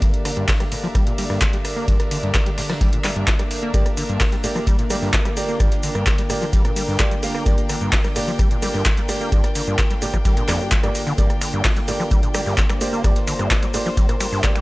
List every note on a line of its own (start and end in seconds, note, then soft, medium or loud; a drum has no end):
0.00 0.12 G2 medium
0.00 14.61 D3 medium
0.00 14.61 A#3 medium
0.00 14.61 D4 loud
0.00 3.70 G4 medium
0.00 14.61 A#4 medium
0.00 3.72 D5 medium
0.00 5.34 E5 medium
0.00 kick loud
0.00 closed hi-hat medium
0.00 ride medium
0.14 closed hi-hat medium
0.25 0.32 D3 medium
0.25 cross-stick medium
0.25 open hi-hat loud
0.25 ride medium
0.37 0.46 G2 loud
0.37 closed hi-hat soft
0.48 kick loud
0.48 snare loud
0.48 clap loud
0.48 closed hi-hat medium
0.48 open hi-hat medium
0.60 0.64 G3 medium
0.60 cross-stick medium
0.60 snare soft
0.60 closed hi-hat medium
0.72 0.76 A2 medium
0.72 open hi-hat medium
0.72 ride medium
0.83 0.87 F3 loud
0.95 1.05 G3 medium
0.95 kick loud
0.95 cross-stick medium
0.95 closed hi-hat medium
0.95 ride medium
1.07 1.13 A#2 medium
1.07 closed hi-hat medium
1.18 1.25 G3 medium
1.18 open hi-hat medium
1.18 ride medium
1.30 1.39 G2 loud
1.30 cross-stick medium
1.30 snare soft
1.41 kick loud
1.41 snare loud
1.41 clap loud
1.41 closed hi-hat medium
1.41 ride medium
1.53 1.57 G3 medium
1.53 snare soft
1.53 closed hi-hat medium
1.65 cross-stick medium
1.65 open hi-hat medium
1.65 ride medium
1.76 1.86 A#3 medium
1.88 1.98 G2 medium
1.88 kick loud
1.88 closed hi-hat medium
1.88 ride medium
2.00 cross-stick medium
2.00 snare soft
2.00 closed hi-hat medium
2.11 2.18 D3 medium
2.11 open hi-hat loud
2.11 ride medium
2.23 2.32 G2 loud
2.23 closed hi-hat soft
2.34 2.38 A#2 medium
2.34 kick loud
2.34 cross-stick medium
2.34 snare loud
2.34 clap loud
2.34 closed hi-hat medium
2.34 ride medium
2.46 2.50 G3 medium
2.46 closed hi-hat medium
2.46 ride soft
2.58 2.62 A2 medium
2.58 snare loud
2.58 open hi-hat medium
2.69 2.73 F3 loud
2.69 cross-stick medium
2.69 snare loud
2.69 closed hi-hat soft
2.69 open hi-hat medium
2.81 2.91 G3 medium
2.81 kick loud
2.81 snare loud
2.81 closed hi-hat medium
2.81 open hi-hat medium
2.93 2.99 A#2 medium
2.93 closed hi-hat medium
3.04 3.11 G3 medium
3.04 cross-stick medium
3.04 clap medium
3.04 open hi-hat loud
3.16 3.25 G2 loud
3.16 closed hi-hat soft
3.27 3.31 A2 medium
3.27 kick loud
3.27 snare loud
3.27 clap loud
3.27 closed hi-hat medium
3.27 ride medium
3.39 3.43 G3 medium
3.39 cross-stick medium
3.39 closed hi-hat medium
3.51 snare medium
3.51 open hi-hat medium
3.51 ride medium
3.62 3.72 A#3 medium
3.62 closed hi-hat soft
3.74 3.84 G2 medium
3.74 3.86 A#3 medium
3.74 14.61 F4 medium
3.74 3.86 G4 medium
3.74 11.17 A#4 medium
3.74 3.86 D5 medium
3.74 kick loud
3.74 closed hi-hat medium
3.74 ride medium
3.74 shaker soft
3.86 cross-stick medium
3.86 closed hi-hat medium
3.86 shaker soft
3.97 4.04 D3 medium
3.97 open hi-hat loud
3.97 ride medium
3.97 shaker medium
4.09 4.19 G2 loud
4.09 closed hi-hat soft
4.09 shaker soft
4.20 4.24 A#2 medium
4.20 kick loud
4.20 cross-stick medium
4.20 snare loud
4.20 clap loud
4.20 closed hi-hat medium
4.20 open hi-hat medium
4.20 shaker soft
4.32 4.36 G3 medium
4.32 snare soft
4.32 closed hi-hat medium
4.32 shaker soft
4.44 4.48 A2 medium
4.44 4.63 A#3 medium
4.44 4.63 G4 medium
4.44 4.63 D5 loud
4.44 open hi-hat medium
4.44 ride medium
4.44 shaker medium
4.56 4.59 F3 loud
4.56 cross-stick medium
4.56 shaker soft
4.67 4.77 G3 medium
4.67 kick loud
4.67 closed hi-hat medium
4.67 ride medium
4.67 shaker soft
4.79 4.85 A#2 medium
4.79 closed hi-hat medium
4.79 shaker soft
4.90 4.97 G3 medium
4.90 5.09 A#3 medium
4.90 5.09 G4 medium
4.90 5.09 D5 medium
4.90 cross-stick medium
4.90 open hi-hat loud
4.90 ride medium
4.90 shaker medium
5.02 5.12 G2 loud
5.02 snare soft
5.02 shaker soft
5.13 kick loud
5.13 snare loud
5.13 clap loud
5.13 closed hi-hat medium
5.13 ride medium
5.13 shaker soft
5.25 5.29 G3 medium
5.25 cross-stick medium
5.25 snare soft
5.25 closed hi-hat medium
5.25 shaker soft
5.32 12.79 G5 medium
5.37 5.56 A#3 medium
5.37 5.56 G4 medium
5.37 5.56 D5 loud
5.37 open hi-hat medium
5.37 ride medium
5.37 shaker medium
5.49 5.58 A#3 medium
5.49 shaker soft
5.60 5.70 G2 medium
5.60 5.72 A#3 medium
5.60 5.72 G4 medium
5.60 5.72 D5 medium
5.60 kick loud
5.60 cross-stick medium
5.60 closed hi-hat medium
5.60 ride medium
5.60 shaker soft
5.72 snare soft
5.72 closed hi-hat medium
5.72 shaker soft
5.83 5.90 D3 medium
5.83 open hi-hat loud
5.83 ride medium
5.83 shaker medium
5.95 6.05 G2 loud
5.95 cross-stick medium
5.95 closed hi-hat soft
5.95 shaker soft
6.06 6.10 A#2 medium
6.06 kick loud
6.06 snare loud
6.06 clap loud
6.06 closed hi-hat medium
6.06 ride medium
6.06 shaker soft
6.18 6.22 G3 medium
6.18 closed hi-hat medium
6.18 ride soft
6.18 shaker soft
6.30 6.34 A2 medium
6.30 6.42 A#3 medium
6.30 6.42 G4 medium
6.30 6.42 D5 loud
6.30 cross-stick medium
6.30 open hi-hat loud
6.30 ride medium
6.30 shaker medium
6.42 6.45 F3 loud
6.42 shaker soft
6.53 6.63 G3 medium
6.53 kick loud
6.53 closed hi-hat medium
6.53 ride medium
6.53 shaker soft
6.65 6.71 A#2 medium
6.65 cross-stick medium
6.65 closed hi-hat medium
6.65 shaker soft
6.76 6.83 G3 medium
6.76 open hi-hat loud
6.76 ride medium
6.76 shaker medium
6.88 6.98 G2 loud
6.88 shaker soft
7.00 7.03 A2 medium
7.00 7.11 A#3 medium
7.00 7.11 G4 medium
7.00 7.11 D5 loud
7.00 kick loud
7.00 cross-stick medium
7.00 snare loud
7.00 clap loud
7.00 closed hi-hat medium
7.00 ride medium
7.00 shaker soft
7.11 7.15 G3 medium
7.11 closed hi-hat medium
7.11 shaker soft
7.23 7.35 A#3 medium
7.23 7.35 G4 medium
7.23 7.35 F5 medium
7.23 snare medium
7.23 open hi-hat medium
7.23 ride medium
7.23 shaker medium
7.35 7.44 A#3 medium
7.35 cross-stick medium
7.35 shaker soft
7.46 7.56 G2 medium
7.46 7.58 A#3 medium
7.46 7.58 G4 medium
7.46 7.58 D5 medium
7.46 kick loud
7.46 closed hi-hat medium
7.46 ride medium
7.46 shaker soft
7.58 closed hi-hat medium
7.58 shaker soft
7.69 7.76 D3 medium
7.69 cross-stick medium
7.69 open hi-hat loud
7.69 ride medium
7.69 shaker medium
7.81 7.91 G2 loud
7.81 closed hi-hat soft
7.81 shaker soft
7.93 7.96 A#2 medium
7.93 kick loud
7.93 snare loud
7.93 clap loud
7.93 closed hi-hat medium
7.93 open hi-hat medium
7.93 shaker soft
8.04 8.08 G3 medium
8.04 cross-stick medium
8.04 snare soft
8.04 closed hi-hat soft
8.04 shaker soft
8.16 8.20 A2 medium
8.16 8.35 A#3 medium
8.16 8.35 G4 medium
8.16 8.35 D5 loud
8.16 open hi-hat loud
8.16 ride medium
8.16 shaker medium
8.28 8.31 F3 loud
8.28 shaker soft
8.39 8.49 G3 medium
8.39 kick loud
8.39 cross-stick medium
8.39 closed hi-hat medium
8.39 ride medium
8.39 shaker soft
8.51 8.57 A#2 medium
8.51 closed hi-hat medium
8.51 shaker soft
8.62 8.69 G3 medium
8.62 8.81 A#3 medium
8.62 8.81 G4 medium
8.62 8.81 D5 loud
8.62 open hi-hat loud
8.62 ride medium
8.62 shaker medium
8.74 8.84 G2 loud
8.74 cross-stick medium
8.74 snare soft
8.74 shaker soft
8.86 8.90 A2 medium
8.86 kick loud
8.86 snare loud
8.86 clap loud
8.86 closed hi-hat medium
8.86 ride medium
8.86 shaker soft
8.97 9.01 G3 medium
8.97 snare soft
8.97 closed hi-hat medium
8.97 shaker soft
9.09 9.28 A#3 loud
9.09 9.28 G4 medium
9.09 9.28 D5 loud
9.09 cross-stick medium
9.09 open hi-hat medium
9.09 ride medium
9.09 shaker medium
9.21 9.30 A#3 medium
9.21 shaker soft
9.32 9.42 G2 medium
9.32 9.44 A#3 medium
9.32 9.44 G4 medium
9.32 9.44 D5 medium
9.32 kick loud
9.32 closed hi-hat medium
9.32 ride medium
9.32 shaker soft
9.44 cross-stick medium
9.44 snare soft
9.44 closed hi-hat soft
9.44 shaker soft
9.55 9.62 D3 medium
9.55 open hi-hat loud
9.55 ride medium
9.55 shaker medium
9.67 9.77 G2 loud
9.67 closed hi-hat soft
9.67 shaker soft
9.79 9.83 A#2 medium
9.79 kick loud
9.79 cross-stick medium
9.79 snare loud
9.79 clap loud
9.79 closed hi-hat medium
9.79 ride medium
9.79 shaker soft
9.90 9.94 G3 medium
9.90 closed hi-hat soft
9.90 ride soft
9.90 shaker soft
10.02 10.06 A2 medium
10.02 10.14 A#3 medium
10.02 10.14 G4 medium
10.02 10.14 D5 loud
10.02 open hi-hat loud
10.02 ride medium
10.02 shaker medium
10.14 10.17 F3 loud
10.14 kick medium
10.14 cross-stick medium
10.14 closed hi-hat soft
10.14 shaker soft
10.25 10.35 G3 medium
10.25 kick loud
10.25 closed hi-hat medium
10.25 ride medium
10.25 shaker soft
10.37 10.43 A#2 medium
10.37 closed hi-hat medium
10.37 shaker soft
10.48 10.62 F2 loud
10.48 10.60 A#3 medium
10.48 10.60 G4 medium
10.48 10.60 D5 medium
10.48 cross-stick medium
10.48 clap medium
10.48 open hi-hat loud
10.48 ride medium
10.48 shaker medium
10.60 10.70 G2 medium
10.60 shaker soft
10.72 10.76 G2 medium
10.72 kick loud
10.72 snare loud
10.72 clap loud
10.72 closed hi-hat medium
10.72 ride medium
10.72 shaker soft
10.83 10.90 G2 loud
10.83 11.02 A#3 medium
10.83 11.02 G4 medium
10.83 11.02 D5 medium
10.83 cross-stick medium
10.83 closed hi-hat medium
10.83 shaker soft
10.95 snare medium
10.95 open hi-hat medium
10.95 ride medium
10.95 shaker medium
11.07 11.13 D3 loud
11.07 shaker soft
11.18 11.28 G2 medium
11.18 11.30 A#3 medium
11.18 11.30 G4 medium
11.18 11.30 D5 medium
11.18 14.61 D5 medium
11.18 kick loud
11.18 closed hi-hat medium
11.18 ride medium
11.18 shaker soft
11.30 cross-stick medium
11.30 closed hi-hat soft
11.30 shaker soft
11.41 11.48 D3 medium
11.41 finger snap medium
11.41 open hi-hat loud
11.41 ride medium
11.41 shaker medium
11.53 11.63 G2 loud
11.53 closed hi-hat soft
11.53 shaker soft
11.65 kick loud
11.65 cross-stick medium
11.65 snare loud
11.65 clap loud
11.65 closed hi-hat medium
11.65 open hi-hat medium
11.65 shaker soft
11.76 11.80 G3 medium
11.76 snare soft
11.76 closed hi-hat soft
11.76 shaker soft
11.88 11.92 A2 medium
11.88 12.07 A#3 medium
11.88 12.07 G4 medium
11.88 12.07 D5 loud
11.88 open hi-hat medium
11.88 ride medium
11.88 shaker medium
12.00 12.04 F3 loud
12.00 cross-stick medium
12.00 shaker soft
12.11 12.21 G3 medium
12.11 kick loud
12.11 closed hi-hat medium
12.11 ride medium
12.11 shaker soft
12.23 12.29 A#2 medium
12.23 closed hi-hat medium
12.23 shaker soft
12.34 12.41 G3 medium
12.34 12.53 A#3 medium
12.34 12.53 G4 medium
12.34 12.53 D5 medium
12.34 finger snap medium
12.34 cross-stick medium
12.34 open hi-hat loud
12.34 ride medium
12.34 shaker medium
12.46 12.56 G2 loud
12.46 snare soft
12.46 shaker soft
12.58 kick loud
12.58 snare loud
12.58 clap loud
12.58 closed hi-hat medium
12.58 ride medium
12.58 shaker soft
12.70 12.73 G3 medium
12.70 finger snap medium
12.70 cross-stick medium
12.70 snare soft
12.70 closed hi-hat soft
12.70 shaker soft
12.76 14.61 C5 medium
12.81 13.00 A#3 loud
12.81 13.00 G4 medium
12.81 13.00 D5 loud
12.81 open hi-hat medium
12.81 ride medium
12.81 shaker medium
12.93 13.02 A#3 medium
12.93 shaker soft
13.04 13.14 G2 medium
13.04 13.16 A#3 medium
13.04 13.16 G4 medium
13.04 13.16 D5 medium
13.04 kick loud
13.04 cross-stick medium
13.04 closed hi-hat medium
13.04 ride medium
13.04 shaker soft
13.16 snare soft
13.16 closed hi-hat soft
13.16 shaker soft
13.28 13.34 D3 medium
13.28 finger snap medium
13.28 open hi-hat loud
13.28 ride medium
13.28 shaker medium
13.39 13.49 G2 loud
13.39 cross-stick medium
13.39 closed hi-hat soft
13.39 shaker soft
13.51 13.55 A#2 medium
13.51 kick loud
13.51 snare loud
13.51 clap loud
13.51 closed hi-hat medium
13.51 ride medium
13.51 shaker medium
13.63 13.66 G3 medium
13.63 closed hi-hat soft
13.63 ride soft
13.63 shaker soft
13.74 13.78 A2 medium
13.74 13.86 A#3 medium
13.74 13.86 G4 medium
13.74 13.86 D5 loud
13.74 cross-stick medium
13.74 open hi-hat medium
13.74 ride medium
13.74 shaker medium
13.86 13.90 F3 loud
13.86 shaker soft
13.97 14.07 G3 medium
13.97 kick loud
13.97 closed hi-hat medium
13.97 ride medium
13.97 shaker soft
14.09 14.15 A#2 medium
14.09 cross-stick medium
14.09 closed hi-hat medium
14.09 shaker soft
14.21 14.27 G3 medium
14.21 finger snap medium
14.21 open hi-hat loud
14.21 ride medium
14.21 shaker medium
14.32 14.42 G2 loud
14.32 shaker soft
14.44 14.48 A2 medium
14.44 14.56 A#3 medium
14.44 14.56 G4 medium
14.44 14.56 D5 loud
14.44 kick loud
14.44 cross-stick medium
14.44 snare loud
14.44 clap loud
14.44 closed hi-hat medium
14.44 ride medium
14.44 shaker soft
14.56 14.59 G3 medium
14.56 finger snap medium
14.56 closed hi-hat medium
14.56 shaker soft